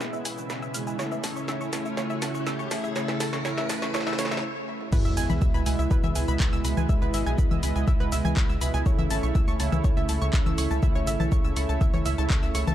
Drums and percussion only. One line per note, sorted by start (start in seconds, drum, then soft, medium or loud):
0.01 snare medium
0.01 shaker soft
0.13 shaker soft
0.25 open hi-hat loud
0.25 shaker medium
0.38 low conga medium
0.38 shaker soft
0.50 snare medium
0.50 shaker soft
0.62 shaker soft
0.74 open hi-hat loud
0.74 shaker medium
0.87 shaker soft
0.99 snare medium
0.99 shaker soft
1.12 low conga medium
1.12 shaker soft
1.24 snare medium
1.24 open hi-hat loud
1.24 shaker medium
1.36 shaker soft
1.48 snare medium
1.48 shaker soft
1.61 shaker soft
1.73 snare medium
1.73 open hi-hat loud
1.73 low conga medium
1.73 shaker medium
1.85 shaker soft
1.97 snare medium
1.97 shaker soft
2.10 shaker soft
2.22 snare medium
2.22 open hi-hat loud
2.22 low conga medium
2.22 shaker medium
2.35 shaker soft
2.47 snare medium
2.47 shaker soft
2.59 shaker soft
2.71 snare medium
2.71 open hi-hat loud
2.71 shaker medium
2.84 shaker soft
2.96 snare medium
2.96 shaker soft
3.08 snare medium
3.08 low conga loud
3.08 shaker soft
3.20 snare medium
3.20 open hi-hat loud
3.20 shaker medium
3.33 snare medium
3.33 shaker soft
3.45 snare loud
3.45 shaker soft
3.58 snare medium
3.58 shaker soft
3.69 snare loud
3.69 open hi-hat loud
3.69 low conga medium
3.69 shaker medium
3.82 snare medium
3.82 shaker soft
3.94 snare loud
3.94 shaker soft
4.00 snare medium
4.07 snare medium
4.07 shaker soft
4.13 snare medium
4.19 snare loud
4.19 open hi-hat loud
4.19 shaker medium
4.25 snare loud
4.31 snare medium
4.31 low conga medium
4.31 shaker soft
4.37 snare loud
4.68 high tom medium
4.81 mid tom medium
4.92 kick loud
4.92 crash loud
4.92 shaker soft
5.05 shaker soft
5.17 open hi-hat loud
5.17 shaker medium
5.30 low conga medium
5.30 shaker soft
5.42 kick loud
5.42 shaker soft
5.54 shaker soft
5.66 open hi-hat loud
5.66 shaker medium
5.79 shaker soft
5.91 kick loud
5.91 shaker soft
6.04 low conga medium
6.04 shaker soft
6.15 open hi-hat loud
6.15 shaker medium
6.28 shaker soft
6.40 kick loud
6.40 clap loud
6.40 shaker soft
6.53 shaker soft
6.65 open hi-hat loud
6.65 shaker medium
6.77 low conga medium
6.77 shaker soft
6.89 kick loud
6.89 shaker soft
7.02 shaker soft
7.14 open hi-hat loud
7.14 shaker medium
7.26 shaker soft
7.38 kick loud
7.38 shaker soft
7.51 low conga medium
7.51 shaker soft
7.63 open hi-hat loud
7.63 shaker medium
7.76 shaker soft
7.88 kick loud
7.88 shaker soft
8.00 shaker soft
8.12 open hi-hat loud
8.12 shaker medium
8.25 low conga loud
8.25 shaker soft
8.37 kick loud
8.37 clap loud
8.37 shaker soft
8.49 shaker soft
8.61 open hi-hat loud
8.61 shaker medium
8.74 shaker soft
8.86 kick loud
8.86 shaker soft
8.99 low conga medium
8.99 shaker soft
9.11 open hi-hat loud
9.11 shaker medium
9.23 shaker soft
9.35 kick loud
9.35 shaker soft
9.48 shaker soft
9.60 open hi-hat loud
9.60 shaker medium
9.72 low conga medium
9.72 shaker soft
9.84 kick loud
9.84 shaker soft
9.97 shaker soft
10.09 open hi-hat loud
10.09 shaker medium
10.21 shaker soft
10.33 kick loud
10.33 clap loud
10.33 shaker soft
10.46 low conga medium
10.46 shaker soft
10.58 open hi-hat loud
10.58 shaker medium
10.71 shaker soft
10.83 kick loud
10.83 shaker soft
10.95 shaker soft
11.07 open hi-hat loud
11.07 shaker medium
11.20 low conga medium
11.20 shaker soft
11.32 kick loud
11.32 shaker soft
11.45 shaker soft
11.56 open hi-hat loud
11.56 shaker medium
11.69 shaker soft
11.81 kick loud
11.81 shaker soft
11.94 low conga medium
11.94 shaker soft
12.06 open hi-hat loud
12.06 shaker medium
12.18 shaker soft
12.30 kick loud
12.30 clap loud
12.30 shaker soft
12.43 shaker soft
12.55 open hi-hat loud
12.55 shaker medium
12.67 low conga medium
12.67 shaker soft